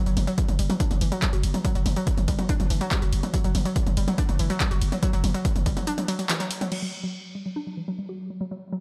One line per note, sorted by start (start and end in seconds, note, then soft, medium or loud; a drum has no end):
0.06 0.16 F#1 medium
0.06 0.14 F#3 loud
0.06 closed hi-hat medium
0.17 0.27 F#1 loud
0.17 open hi-hat loud
0.17 mid tom medium
0.17 ride medium
0.27 0.33 F#3 loud
0.27 closed hi-hat soft
0.38 kick loud
0.38 closed hi-hat medium
0.38 ride medium
0.48 0.58 F#1 medium
0.48 closed hi-hat medium
0.48 mid tom medium
0.59 0.69 F#1 loud
0.59 0.67 G3 medium
0.59 open hi-hat loud
0.59 ride medium
0.70 0.78 F#3 medium
0.70 closed hi-hat medium
0.70 mid tom loud
0.80 0.83 D4 loud
0.80 kick loud
0.80 closed hi-hat medium
0.80 ride medium
0.91 1.01 F#1 medium
0.91 0.96 F#3 medium
0.91 closed hi-hat medium
0.91 mid tom medium
1.01 1.12 F#1 loud
1.01 1.07 E3 medium
1.01 open hi-hat loud
1.01 ride medium
1.12 1.20 F#3 loud
1.12 closed hi-hat medium
1.22 1.28 G3 medium
1.22 kick loud
1.22 clap loud
1.22 closed hi-hat medium
1.22 ride medium
1.33 1.43 F#1 medium
1.33 1.41 F#4 medium
1.33 closed hi-hat medium
1.43 1.54 F#1 loud
1.43 open hi-hat loud
1.43 ride medium
1.54 1.62 F#3 medium
1.54 closed hi-hat medium
1.54 mid tom medium
1.65 1.70 F#3 loud
1.65 kick loud
1.65 closed hi-hat medium
1.65 ride medium
1.75 1.85 F#1 medium
1.75 1.83 F#3 loud
1.75 closed hi-hat medium
1.86 1.96 F#1 loud
1.86 open hi-hat loud
1.86 mid tom medium
1.86 ride medium
1.96 2.02 F#3 loud
1.96 closed hi-hat soft
2.07 kick loud
2.07 closed hi-hat medium
2.07 ride medium
2.18 2.27 F#1 medium
2.18 closed hi-hat medium
2.18 mid tom medium
2.28 2.38 F#1 loud
2.28 2.36 G3 medium
2.28 kick medium
2.28 open hi-hat loud
2.28 ride medium
2.39 2.47 F#3 medium
2.39 closed hi-hat medium
2.39 mid tom medium
2.49 2.52 D4 loud
2.49 kick loud
2.49 closed hi-hat medium
2.49 ride medium
2.60 2.70 F#1 medium
2.60 2.65 F#3 medium
2.60 closed hi-hat soft
2.60 mid tom medium
2.70 2.81 F#1 loud
2.70 2.76 E3 medium
2.70 open hi-hat loud
2.70 ride medium
2.81 2.89 F#3 loud
2.81 closed hi-hat medium
2.91 2.97 G3 medium
2.91 kick loud
2.91 clap loud
2.91 closed hi-hat medium
2.91 ride medium
3.02 3.12 F#1 medium
3.02 3.10 F#4 medium
3.02 closed hi-hat medium
3.12 3.23 F#1 loud
3.12 open hi-hat loud
3.12 ride medium
3.23 3.31 F#3 medium
3.23 closed hi-hat medium
3.23 mid tom medium
3.34 3.39 F#3 loud
3.34 kick loud
3.34 closed hi-hat medium
3.34 ride medium
3.44 3.54 F#1 medium
3.44 3.52 F#3 loud
3.44 closed hi-hat medium
3.55 3.65 F#1 loud
3.55 open hi-hat loud
3.55 mid tom medium
3.55 ride medium
3.65 3.71 F#3 loud
3.65 closed hi-hat medium
3.76 kick loud
3.76 closed hi-hat loud
3.76 ride medium
3.87 3.96 F#1 medium
3.87 closed hi-hat medium
3.87 mid tom medium
3.97 4.07 F#1 loud
3.97 4.05 G3 medium
3.97 open hi-hat loud
3.97 ride medium
4.08 4.16 F#3 medium
4.08 closed hi-hat medium
4.08 mid tom loud
4.18 4.21 D4 loud
4.18 kick loud
4.18 closed hi-hat medium
4.18 ride medium
4.29 4.39 F#1 medium
4.29 4.34 F#3 medium
4.29 closed hi-hat medium
4.29 mid tom medium
4.39 4.50 F#1 loud
4.39 4.45 E3 medium
4.39 open hi-hat loud
4.39 ride medium
4.50 4.58 F#3 loud
4.50 closed hi-hat medium
4.60 4.66 G3 medium
4.60 kick loud
4.60 clap loud
4.60 closed hi-hat loud
4.60 ride medium
4.71 4.81 F#1 medium
4.71 4.79 F#4 medium
4.71 closed hi-hat soft
4.82 4.92 F#1 loud
4.82 open hi-hat loud
4.82 ride medium
4.92 5.00 F#3 medium
4.92 closed hi-hat medium
4.92 mid tom medium
5.03 5.08 F#3 loud
5.03 kick loud
5.03 closed hi-hat loud
5.03 ride medium
5.13 5.23 F#1 medium
5.13 5.21 F#3 loud
5.13 closed hi-hat medium
5.24 5.34 F#1 loud
5.24 open hi-hat loud
5.24 mid tom medium
5.24 ride medium
5.34 5.40 F#3 loud
5.34 closed hi-hat medium
5.45 kick loud
5.45 closed hi-hat loud
5.45 ride medium
5.56 5.65 F#1 medium
5.56 closed hi-hat medium
5.56 mid tom medium
5.66 5.76 F#1 loud
5.66 5.74 G3 medium
5.66 kick medium
5.66 open hi-hat loud
5.66 ride medium
5.77 5.85 F#3 medium
5.77 closed hi-hat medium
5.77 mid tom medium
5.87 5.90 D4 loud
5.87 closed hi-hat loud
5.87 ride medium
5.98 6.03 F#3 medium
5.98 closed hi-hat medium
5.98 mid tom medium
6.08 6.16 F#3 loud
6.08 open hi-hat loud
6.08 ride medium
6.19 6.24 F#3 medium
6.19 closed hi-hat medium
6.29 6.37 E3 loud
6.29 clap loud
6.29 closed hi-hat loud
6.29 ride medium
6.40 6.43 F#3 loud
6.40 closed hi-hat medium
6.51 open hi-hat loud
6.51 ride medium
6.61 6.66 F#3 medium
6.61 closed hi-hat medium
6.61 mid tom medium
6.72 6.77 F#3 loud
6.72 8.80 F#3 medium
6.72 crash medium
6.82 6.90 F#3 loud
7.03 7.09 F#3 loud
7.35 7.43 G3 medium
7.46 7.54 F#3 medium
7.56 7.59 D4 loud
7.67 7.72 F#3 medium
7.77 7.83 E3 medium
7.88 7.96 F#3 loud
7.98 8.04 G3 medium
8.09 8.17 F#4 medium
8.30 8.38 F#3 medium
8.41 8.46 F#3 loud
8.51 8.59 F#3 loud
8.72 8.78 F#3 loud